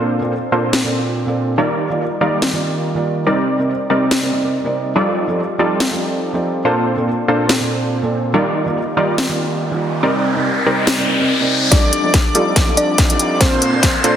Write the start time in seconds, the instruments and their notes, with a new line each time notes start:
Already playing: felt piano A#2 A#3 C4 A4 D5, supersaw synth A#3 D4 F4 A4 C5
0.20 felt piano A#2 A#3 C4 A4 D5
0.51 felt piano A#2 A#3 C4 A4 D5, supersaw synth A#3 D4 F4 A4 C5
0.73 snare
0.84 felt piano A#2 A#3 C4 A4 D5
1.26 felt piano A#2 A#3 C4 A4 D5
1.57 felt piano D#3 A#3 F4 G4 D5, supersaw synth G3 D#4 F4 A#4 D5
1.90 felt piano D#3 A#3 F4 G4 D5
2.20 felt piano D#3 A#3 F4 G4 D5, supersaw synth G3 D#4 F4 A#4 D5
2.42 snare
2.53 felt piano D#3 A#3 F4 G4 D5
2.95 felt piano D#3 A#3 F4 G4 D5
3.26 felt piano C3 C4 D#4 A#4 D5, supersaw synth G3 C4 D#4 A#4 D5
3.58 felt piano C3 C4 D#4 A#4 D5
3.89 felt piano C3 C4 D#4 A#4 D5, supersaw synth G3 C4 D#4 A#4 D5
4.11 snare
4.22 felt piano C3 C4 D#4 A#4 D5
4.31 felt piano C3 C4 D#4 A#4 D5
4.43 felt piano C3 C4 D#4 A#4 D5
4.64 felt piano C3 C4 D#4 A#4 D5
4.95 felt piano F3 C4 D#4 G4 A4 D5, supersaw synth G3 D#4 F4 A4 D5
5.27 felt piano F3 C4 D#4 G4 A4 D5
5.58 felt piano F3 C4 D#4 G4 A4 D5, supersaw synth G3 D#4 F4 A4 D5
5.80 snare
5.91 felt piano F3 C4 D#4 G4 A4 D5
6.33 felt piano F3 C4 D#4 G4 A4 D5
6.64 felt piano A#2 A#3 C4 A4 D5, supersaw synth A#3 D4 F4 A4 C5
6.96 felt piano A#2 A#3 C4 A4 D5
7.27 felt piano A#2 A#3 C4 A4 D5, supersaw synth A#3 D4 F4 A4 C5
7.49 snare
7.60 felt piano A#2 A#3 C4 A4 D5
8.02 felt piano A#2 A#3 C4 A4 D5
8.33 felt piano D#3 A#3 F4 G4 D5, supersaw synth G3 D#4 F4 A#4 D5, riser
8.66 felt piano D#3 A#3 F4 G4 D5
8.96 felt piano D#3 A#3 F4 G4 D5, supersaw synth G3 D#4 F4 A#4 D5
9.18 snare
9.29 felt piano D#3 A#3 F4 G4 D5
9.71 felt piano D#3 A#3 F4 G4 D5
10.02 felt piano C3 C4 D#4 A#4 D5, supersaw synth G3 C4 D#4 A#4 D5
10.34 felt piano C3 C4 D#4 A#4 D5
10.65 felt piano C3 C4 D#4 A#4 D5, supersaw synth G3 C4 D#4 A#4 D5
10.87 snare
10.97 felt piano C3 C4 D#4 A#4 D5
11.07 felt piano C3 C4 D#4 A#4 D5
11.19 felt piano C3 C4 D#4 A#4 D5
11.39 felt piano C3 C4 D#4 A#4 D5
11.70 felt piano F3 D5, supersaw synth G3 D#4 F4 A4 D5, synth pluck D4 D5, digital synth lead D5, kick, snare, closed hi-hat, riser
11.93 closed hi-hat
12.03 felt piano F3 C4 D#4 G4 A4 D5
12.14 kick, snare, closed hi-hat
12.34 felt piano F3 C4 D#4 G4 A4 D5, supersaw synth G3 D#4 F4 A4 D5, digital synth lead D5, closed hi-hat
12.56 kick, snare, closed hi-hat
12.66 felt piano F3 C4 D#4 G4 A4 D5
12.77 synth pluck D4 D5, closed hi-hat
12.98 kick, snare, closed hi-hat
13.09 felt piano F3 C4 D#4 G4 A4 D5, closed hi-hat
13.19 closed hi-hat
13.40 felt piano A#2, supersaw synth A#3 D4 F4 A4 C5, synth pluck C4 C5, digital synth lead C5, kick, snare, closed hi-hat
13.62 closed hi-hat
13.72 felt piano A#2 A#3 C4 A4 D5
13.83 kick, snare, closed hi-hat
14.03 felt piano A#2 A#3 C4 A4 D5, supersaw synth A#3 D4 F4 A4 C5, digital synth lead C5, closed hi-hat